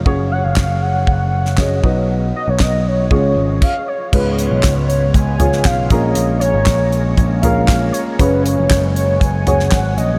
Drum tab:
CC |----------------|------------x---|x---------------|----------------|
HH |----------------|----------------|--x-x-x-x-x-x-x-|x-x-x-x-x-x-x-x-|
CP |----x-------x---|----x-----------|----x-------x---|----x-------x---|
SD |----o------oo---|----o-----------|----o------oo---|----o-------o---|
FT |----------------|----------------|----------o-----|----------o-----|
BD |o---o---o---o-o-|----o---o---o---|o---o---o---o-o-|----o---o---o---|

CC |----------------|
HH |x-x-x-x-x-x-x-x-|
CP |----x-------x---|
SD |----o------oo---|
FT |----------o-----|
BD |o---o---o---o---|